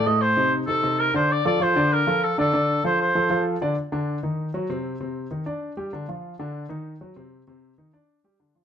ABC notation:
X:1
M:4/4
L:1/8
Q:1/4=194
K:Bb
V:1 name="Oboe"
e c2 z A2 B c | d d c2 B2 A A- | A2 c c3 z2 | z8 |
z8 | z8 | z8 |]
V:2 name="Grand piano"
[A,,A,A]2 [C,CE]2 [C,CE] [C,CE]2 [D,Dd]- | [D,Dd] [F,FA] [F,F] [D,Dd]2 [F,FA]2 [D,Dd] | [D,Dd]2 [F,FA]2 [F,FA] [F,FA]2 [D,Dd] | z [D,D]2 [E,E]2 [_G,_G] [C,C]2 |
[C,C]2 [E,E] [Dd]2 [G,G] [D,D] [F,F]- | [F,F] [D,D]2 [E,E]2 [_G,_G] [C,C]2 | [C,C]2 [E,E] [Dd]2 [G,G] [D,D] [F,F] |]